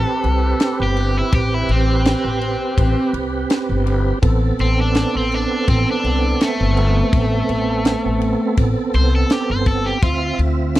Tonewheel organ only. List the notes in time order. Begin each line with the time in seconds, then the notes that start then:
Already playing: C4 G4 B4
4.22 B3 C4 A4
10.02 C4 F4 E5